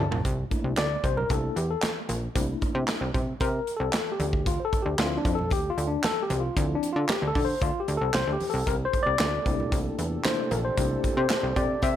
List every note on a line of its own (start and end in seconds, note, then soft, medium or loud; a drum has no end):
0.00 0.23 D3 medium
0.00 0.23 F3 medium
0.00 0.21 C4 medium
0.00 0.21 G4 loud
0.00 0.23 E5 medium
0.00 0.21 A5 medium
0.11 0.21 A#1 loud
0.11 floor tom loud
0.25 0.44 C2 loud
0.25 kick loud
0.25 closed hi-hat loud
0.25 muted conga soft
0.51 0.86 A3 medium
0.51 0.86 A#3 soft
0.51 0.86 D4 soft
0.51 0.87 E4 medium
0.51 kick medium
0.51 closed hi-hat medium
0.64 0.74 C2 medium
0.77 0.97 D2 medium
0.77 1.05 D5 medium
0.77 snare loud
0.77 clap medium
0.77 closed hi-hat medium
0.77 high conga medium
1.04 1.23 C2 medium
1.04 1.18 C5 medium
1.04 kick loud
1.04 closed hi-hat medium
1.17 1.31 A#4 medium
1.17 low conga medium
1.29 1.49 C2 loud
1.29 1.54 A3 soft
1.29 1.54 A#3 soft
1.29 1.54 D4 soft
1.29 1.54 E4 medium
1.29 1.55 A4 medium
1.29 kick loud
1.29 closed hi-hat loud
1.29 muted conga soft
1.56 1.76 E2 medium
1.56 1.69 G4 medium
1.56 closed hi-hat medium
1.71 1.95 A4 medium
1.82 snare loud
1.82 clap medium
1.82 closed hi-hat medium
1.82 high conga medium
2.09 2.28 A#1 medium
2.09 closed hi-hat medium
2.09 high conga medium
2.35 2.55 C2 medium
2.35 3.10 A3 medium
2.35 3.11 A#3 soft
2.35 3.11 D4 soft
2.35 3.11 E4 medium
2.35 kick loud
2.35 closed hi-hat loud
2.35 muted conga soft
2.61 kick medium
2.61 closed hi-hat medium
2.61 muted conga soft
2.75 2.85 C3 medium
2.88 snare loud
2.88 clap medium
2.88 closed hi-hat medium
2.88 high conga medium
3.01 3.11 C2 medium
3.14 3.34 C3 medium
3.14 kick loud
3.14 closed hi-hat medium
3.14 low conga medium
3.40 3.60 C3 loud
3.40 3.74 A#4 medium
3.40 kick loud
3.40 closed hi-hat loud
3.40 muted conga soft
3.67 closed hi-hat medium
3.77 3.90 C2 medium
3.77 4.12 A4 medium
3.93 snare loud
3.93 clap medium
3.93 closed hi-hat medium
3.93 high conga medium
4.12 4.48 G4 medium
4.20 4.58 D2 medium
4.20 closed hi-hat medium
4.20 high conga medium
4.33 kick medium
4.46 4.60 F4 medium
4.46 kick loud
4.46 closed hi-hat loud
4.46 muted conga soft
4.60 4.64 C5 medium
4.65 4.82 A4 medium
4.73 kick medium
4.73 closed hi-hat medium
4.82 4.95 D2 medium
4.82 4.98 G4 medium
4.99 5.18 D2 loud
4.99 5.34 F3 medium
4.99 5.34 C4 medium
4.99 5.34 E4 medium
4.99 5.17 F4 medium
4.99 snare loud
4.99 clap medium
4.99 closed hi-hat medium
4.99 high conga medium
5.17 5.35 D4 medium
5.25 5.53 F2 medium
5.25 kick loud
5.25 closed hi-hat medium
5.35 5.51 A4 medium
5.35 low conga medium
5.50 5.71 D2 loud
5.50 5.70 G4 loud
5.50 kick loud
5.50 closed hi-hat loud
5.50 muted conga soft
5.70 5.88 F4 medium
5.78 5.97 D2 medium
5.78 closed hi-hat medium
5.88 6.05 D4 medium
6.04 6.23 A4 loud
6.04 snare loud
6.04 clap loud
6.04 closed hi-hat medium
6.04 high conga medium
6.23 6.40 G4 medium
6.30 6.49 C2 loud
6.30 closed hi-hat medium
6.30 high conga medium
6.40 6.76 F4 medium
6.56 6.76 D2 loud
6.56 6.91 F3 medium
6.56 6.92 C4 medium
6.56 6.92 E4 medium
6.56 kick loud
6.56 closed hi-hat loud
6.56 muted conga soft
6.75 6.91 D4 medium
6.83 closed hi-hat medium
6.93 7.06 D3 medium
6.93 7.08 F4 medium
7.09 7.26 G4 medium
7.09 snare loud
7.09 clap loud
7.09 closed hi-hat medium
7.09 high conga medium
7.22 7.32 D2 medium
7.28 7.45 A4 medium
7.35 7.55 D3 medium
7.35 kick loud
7.35 open hi-hat medium
7.35 low conga medium
7.45 7.61 C5 loud
7.61 7.71 D2 loud
7.61 7.80 F4 loud
7.61 kick loud
7.61 closed hi-hat loud
7.61 muted conga soft
7.80 7.98 G4 medium
7.88 7.98 D2 medium
7.88 closed hi-hat medium
7.97 8.11 C2 medium
7.97 8.15 A4 medium
8.14 8.24 C2 medium
8.14 8.31 C5 loud
8.14 snare loud
8.14 clap medium
8.14 closed hi-hat medium
8.14 high conga medium
8.27 8.37 D2 medium
8.33 8.50 G4 medium
8.40 open hi-hat medium
8.40 high conga medium
8.50 8.63 C2 medium
8.50 8.68 A4 medium
8.67 8.86 C2 loud
8.67 11.96 A#2 medium
8.67 11.96 C3 medium
8.67 11.96 D4 medium
8.67 11.96 G4 medium
8.67 11.96 A4 medium
8.67 8.75 A#4 medium
8.67 kick loud
8.67 closed hi-hat loud
8.67 muted conga soft
8.85 9.03 C5 loud
8.93 kick medium
8.93 closed hi-hat medium
9.03 9.16 C2 medium
9.03 9.77 D5 loud
9.19 9.39 D2 medium
9.19 snare loud
9.19 clap medium
9.19 closed hi-hat medium
9.19 high conga medium
9.46 9.65 C2 medium
9.46 10.21 A3 medium
9.46 10.21 A#3 medium
9.46 10.21 D4 medium
9.46 10.21 E4 medium
9.46 kick loud
9.46 closed hi-hat medium
9.60 low conga medium
9.72 9.91 C2 loud
9.72 kick loud
9.72 closed hi-hat loud
9.72 muted conga soft
9.99 10.18 E2 medium
9.99 closed hi-hat medium
10.25 10.49 A3 medium
10.25 10.49 A#3 medium
10.25 10.49 D4 medium
10.25 10.49 E4 medium
10.25 10.52 C5 medium
10.25 snare loud
10.25 clap medium
10.25 closed hi-hat medium
10.25 high conga medium
10.51 10.70 A#1 medium
10.51 10.57 A#4 medium
10.51 closed hi-hat medium
10.51 high conga medium
10.65 11.14 C5 medium
10.77 10.97 C2 loud
10.77 11.12 A3 medium
10.77 11.13 A#3 medium
10.77 11.13 D4 soft
10.77 11.13 E4 medium
10.77 kick medium
10.77 closed hi-hat loud
10.77 muted conga soft
11.04 kick medium
11.04 closed hi-hat medium
11.04 muted conga soft
11.17 11.27 C3 loud
11.17 11.58 C5 medium
11.30 snare loud
11.30 clap loud
11.30 closed hi-hat medium
11.30 high conga medium
11.43 11.53 C2 medium
11.56 11.76 C3 medium
11.56 11.84 D5 medium
11.56 kick loud
11.56 closed hi-hat medium
11.56 low conga medium
11.82 11.96 C3 loud
11.82 11.95 E5 loud
11.82 kick loud
11.82 closed hi-hat loud
11.82 muted conga medium